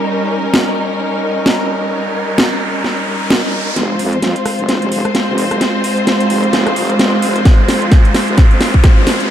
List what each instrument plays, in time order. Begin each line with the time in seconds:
Already playing: string section G3 C#4 D#4 A#4
0.07 riser
0.54 snare
1.46 snare
2.38 snare
2.84 snare
3.30 snare
3.76 wobble bass F1, string section G#3 C4 F4 C5, snare, closed hi-hat, riser
3.99 wobble bass F2, open hi-hat
4.13 closed hi-hat
4.22 snare, closed hi-hat
4.36 closed hi-hat
4.46 cross-stick, open hi-hat
4.59 wobble bass F1, closed hi-hat
4.69 snare, closed hi-hat
4.82 closed hi-hat
4.92 open hi-hat
5.05 cross-stick, closed hi-hat
5.15 snare, closed hi-hat
5.28 wobble bass F1
5.38 open hi-hat
5.51 cross-stick, closed hi-hat
5.61 snare, closed hi-hat
5.84 open hi-hat
5.97 closed hi-hat
6.07 snare, closed hi-hat
6.20 closed hi-hat
6.30 wobble bass F1, open hi-hat
6.44 closed hi-hat
6.53 wobble bass F1, snare, closed hi-hat
6.67 cross-stick, closed hi-hat
6.76 wobble bass F1, open hi-hat
6.90 closed hi-hat
6.99 snare, closed hi-hat
7.22 wobble bass F1, open hi-hat
7.36 closed hi-hat
7.45 wobble bass F1, kick, snare, closed hi-hat
7.69 wobble bass F2, snare, open hi-hat
7.82 closed hi-hat
7.92 kick, snare, closed hi-hat
8.05 closed hi-hat
8.14 snare, open hi-hat
8.28 wobble bass F1, closed hi-hat
8.38 kick, snare, closed hi-hat
8.51 closed hi-hat
8.61 snare, open hi-hat
8.74 kick, closed hi-hat
8.84 kick, snare, closed hi-hat
8.97 wobble bass F1
9.07 snare, open hi-hat
9.20 closed hi-hat